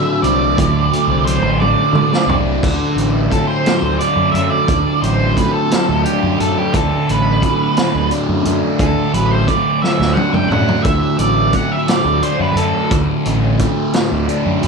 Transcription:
0.00 0.57 D3 medium
0.00 1.25 F#3 medium
0.00 0.92 A3 medium
0.00 0.22 D4 medium
0.00 0.18 E5 medium
0.22 0.54 C2 medium
0.22 1.61 D4 medium
0.22 1.28 D5 loud
0.22 closed hi-hat medium
0.57 0.89 D2 medium
0.57 2.28 D3 medium
0.57 kick loud
0.57 closed hi-hat loud
0.92 2.63 A3 medium
0.92 closed hi-hat medium
1.07 1.39 C2 medium
1.25 1.94 F#3 medium
1.25 1.57 C5 medium
1.25 closed hi-hat medium
1.42 1.73 A1 medium
1.60 2.29 D4 medium
1.60 2.33 D5 medium
1.60 high tom medium
1.93 2.09 D3 loud
1.93 2.63 F#3 medium
1.93 mid tom medium
2.13 snare medium
2.27 2.58 C2 medium
2.27 2.63 D4 medium
2.27 floor tom medium
2.63 2.78 D2 medium
2.63 4.68 D3 medium
2.63 kick loud
2.63 crash loud
2.96 3.28 A1 medium
2.96 3.67 F#3 medium
2.96 closed hi-hat medium
3.31 4.33 A3 medium
3.31 3.47 A4 medium
3.31 kick medium
3.31 closed hi-hat medium
3.47 3.95 C5 loud
3.66 5.02 F#3 medium
3.66 snare loud
3.66 closed hi-hat medium
3.82 3.98 D2 medium
3.99 6.05 D4 medium
3.99 4.31 D5 medium
3.99 closed hi-hat medium
4.16 4.32 F#2 medium
4.31 4.50 F#2 medium
4.31 5.37 A3 medium
4.31 4.50 E5 loud
4.31 closed hi-hat medium
4.50 5.02 D5 loud
4.68 4.84 D2 medium
4.68 6.73 D3 medium
4.68 kick loud
4.68 closed hi-hat medium
5.01 5.33 A1 medium
5.01 5.70 F#3 medium
5.01 5.37 C5 medium
5.01 closed hi-hat medium
5.37 6.38 A3 medium
5.37 5.52 B4 medium
5.37 kick medium
5.37 closed hi-hat medium
5.53 6.03 A4 medium
5.71 7.07 F#3 medium
5.71 snare loud
5.71 closed hi-hat loud
5.89 6.04 D2 medium
6.04 8.11 D4 medium
6.04 6.40 G4 medium
6.04 closed hi-hat medium
6.23 6.38 F#2 medium
6.38 6.55 F#2 medium
6.38 7.42 A3 medium
6.38 6.58 A4 medium
6.38 closed hi-hat medium
6.58 6.75 G4 medium
6.74 6.90 D2 medium
6.74 8.78 D3 medium
6.74 7.10 A4 medium
6.74 kick loud
6.74 closed hi-hat medium
7.08 7.40 A1 medium
7.08 7.77 F#3 medium
7.08 8.08 B4 medium
7.08 closed hi-hat medium
7.42 8.44 A3 medium
7.42 kick medium
7.42 closed hi-hat medium
7.77 9.13 F#3 medium
7.77 snare loud
7.77 closed hi-hat medium
7.95 8.10 D2 medium
8.11 10.16 D4 medium
8.11 closed hi-hat medium
8.29 8.44 F#2 medium
8.44 8.61 F#2 loud
8.44 9.48 A3 medium
8.44 closed hi-hat medium
8.78 8.95 D2 medium
8.78 10.85 D3 medium
8.78 9.14 A4 medium
8.78 kick loud
8.78 closed hi-hat medium
9.13 9.45 A1 medium
9.13 9.82 F#3 medium
9.13 9.31 B4 medium
9.13 closed hi-hat medium
9.31 9.47 C5 medium
9.47 10.50 A3 medium
9.47 9.82 D5 medium
9.47 kick medium
9.47 closed hi-hat medium
9.82 11.19 F#3 medium
9.82 10.17 E5 medium
9.82 snare medium
9.99 10.15 D2 medium
9.99 snare medium
10.13 12.22 D4 medium
10.13 10.33 F#5 medium
10.17 high tom medium
10.33 10.49 F#2 medium
10.33 10.49 G5 medium
10.33 mid tom medium
10.50 10.66 F#2 medium
10.50 11.54 A3 medium
10.50 10.82 F#5 medium
10.50 mid tom loud
10.69 floor tom medium
10.83 11.01 D2 medium
10.83 12.91 D3 medium
10.83 11.18 E5 loud
10.83 kick loud
10.83 closed hi-hat medium
11.19 11.50 A1 medium
11.19 11.87 F#3 medium
11.19 11.54 D5 medium
11.19 closed hi-hat medium
11.53 12.56 A3 medium
11.53 11.72 F#5 medium
11.53 kick medium
11.53 closed hi-hat medium
11.72 11.89 E5 medium
11.88 13.25 F#3 medium
11.88 12.24 D5 medium
11.88 snare loud
11.88 closed hi-hat medium
12.04 12.20 D2 medium
12.22 14.27 D4 medium
12.22 12.38 C5 medium
12.22 closed hi-hat medium
12.40 12.55 F#2 medium
12.40 12.57 B4 medium
12.55 12.72 F#2 medium
12.55 13.59 A3 medium
12.55 12.91 A4 medium
12.55 closed hi-hat medium
12.91 13.07 D2 medium
12.91 14.68 D3 medium
12.91 kick loud
12.91 closed hi-hat medium
13.25 13.57 A1 medium
13.25 13.93 F#3 medium
13.25 closed hi-hat medium
13.59 14.63 A3 medium
13.59 kick medium
13.59 closed hi-hat medium
13.93 14.68 F#3 medium
13.93 snare loud
13.93 closed hi-hat medium
14.12 14.27 D2 medium
14.28 14.68 D4 medium
14.28 closed hi-hat medium
14.46 14.61 F#2 medium
14.63 14.68 F#2 medium
14.63 14.68 A3 medium
14.63 closed hi-hat medium

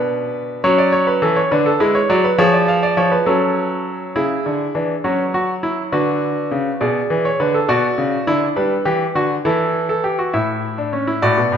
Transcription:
0.00 0.61 B2 medium
0.00 0.61 D4 medium
0.00 0.61 B4 medium
0.64 1.20 F#3 medium
0.64 1.49 C#4 medium
0.64 0.78 C#5 medium
0.78 0.92 D5 medium
0.92 1.07 C#5 medium
1.07 1.21 B4 medium
1.22 1.40 E3 medium
1.22 1.36 A4 medium
1.36 1.51 C#5 medium
1.51 1.70 D3 medium
1.51 1.70 D4 medium
1.51 1.66 B4 medium
1.66 1.80 A4 medium
1.80 1.99 G#3 medium
1.80 1.98 E4 medium
1.80 1.94 B4 medium
1.95 2.09 C#5 medium
2.09 2.28 F#3 medium
2.09 2.28 F#4 medium
2.09 2.24 D5 medium
2.24 2.38 B4 medium
2.38 2.96 F3 loud
2.38 3.24 G#4 medium
2.38 2.53 C#5 medium
2.53 2.68 D5 medium
2.68 2.83 F5 medium
2.83 2.97 D5 medium
2.97 3.16 F3 medium
2.97 3.12 C#5 medium
3.12 3.26 B4 medium
3.26 4.13 F#3 medium
3.26 4.13 C#4 medium
3.26 4.13 A4 medium
4.16 4.34 C#3 medium
4.16 4.73 E4 medium
4.16 5.02 G#4 medium
4.46 4.64 D3 medium
4.75 4.93 E3 medium
4.75 4.93 D4 medium
5.04 5.90 F#3 medium
5.04 5.23 C#4 medium
5.04 5.33 F#4 medium
5.34 5.52 F#4 medium
5.63 5.81 E4 medium
5.92 6.50 D3 medium
5.92 6.78 F#4 medium
5.92 6.78 B4 medium
6.51 6.70 C#3 medium
6.81 6.99 B2 medium
6.81 7.66 G#4 medium
6.81 7.23 D5 medium
7.10 7.28 E3 medium
7.25 7.39 C#5 medium
7.40 7.58 D3 medium
7.40 7.54 B4 medium
7.54 7.68 A4 medium
7.69 7.87 B2 medium
7.69 8.26 F#4 medium
7.69 8.54 D5 medium
7.98 8.16 C#3 medium
8.27 8.46 D3 medium
8.27 8.46 E4 medium
8.56 8.75 G3 medium
8.56 8.75 D4 medium
8.56 9.43 B4 medium
8.85 9.04 E3 medium
8.85 9.04 G4 medium
9.15 9.34 D3 medium
9.15 9.34 F#4 medium
9.45 10.32 E3 medium
9.45 9.88 E4 medium
9.45 9.88 A4 medium
9.89 10.04 A4 medium
10.04 10.19 G4 medium
10.19 10.34 F#4 medium
10.33 11.21 A2 medium
10.33 10.77 E4 medium
10.33 11.20 E5 medium
10.78 10.93 D4 medium
10.93 11.08 C#4 medium
11.07 11.22 E4 medium
11.22 11.37 A2 medium
11.22 11.57 F#4 medium
11.22 11.57 D5 medium
11.38 11.52 B2 medium
11.52 11.57 A2 medium

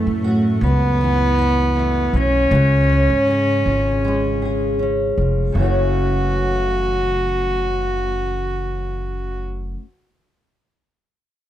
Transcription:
0.00 2.53 F#2 medium
0.00 0.27 E3 medium
0.00 0.65 A3 medium
0.00 1.75 A3 medium
0.00 0.63 C#4 medium
0.00 0.24 F#4 medium
0.07 0.58 A2 medium
0.24 1.37 F#4 medium
0.61 2.09 C#2 medium
0.61 2.17 B3 medium
0.61 2.14 C#4 soft
1.01 2.61 E3 medium
1.38 2.60 F#4 medium
1.76 2.60 A3 medium
2.13 2.49 B1 medium
2.13 2.90 C#4 soft
2.13 4.81 C#4 loud
2.51 3.06 C#2 medium
2.51 5.53 C#3 medium
2.90 4.79 C#4 soft
3.10 3.61 G#2 medium
3.27 4.41 G#4 medium
3.66 5.14 G#1 medium
3.66 5.17 F4 soft
4.04 5.57 G#3 medium
4.42 5.62 G#4 soft
4.79 5.59 C#4 soft
5.18 5.53 F1 medium
5.18 5.60 F4 soft
5.52 9.74 F#1 medium
5.52 9.75 F#2 medium
5.52 9.77 C#3 medium
5.57 9.80 E3 medium
5.57 9.82 A3 medium
5.57 9.83 C#4 medium
5.57 9.38 F#4 medium
5.62 9.85 F#4 medium

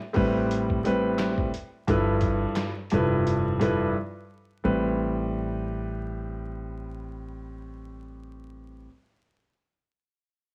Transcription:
0.13 1.35 A1 medium
0.13 0.79 A2 loud
0.13 0.79 G3 medium
0.13 0.79 C4 medium
0.13 0.80 B4 medium
0.13 kick loud
0.13 open hi-hat soft
0.51 closed hi-hat loud
0.70 kick medium
0.84 1.48 A2 medium
0.84 1.49 G3 medium
0.84 1.49 C4 medium
0.84 1.50 B4 loud
0.84 closed hi-hat medium
1.18 snare loud
1.18 clap medium
1.18 closed hi-hat loud
1.38 kick loud
1.54 closed hi-hat medium
1.87 2.44 G1 loud
1.87 2.68 G2 medium
1.87 2.69 F3 medium
1.87 2.69 E4 medium
1.87 2.69 A4 medium
1.87 2.70 B4 loud
1.87 kick loud
1.87 closed hi-hat medium
2.21 kick medium
2.21 closed hi-hat medium
2.56 snare loud
2.56 clap medium
2.56 closed hi-hat medium
2.90 3.91 F1 medium
2.90 3.56 G2 medium
2.90 3.56 F3 medium
2.90 3.56 E4 medium
2.90 3.57 A4 medium
2.90 3.57 B4 medium
2.90 closed hi-hat medium
3.27 closed hi-hat medium
3.59 3.94 G2 medium
3.59 3.95 F3 medium
3.59 3.95 E4 medium
3.59 3.95 A4 medium
3.59 3.96 B4 loud
3.59 closed hi-hat medium
4.64 8.86 A1 loud
4.64 8.86 A2 medium
4.64 8.86 G3 medium
4.64 8.86 C4 medium
4.64 8.86 B4 medium

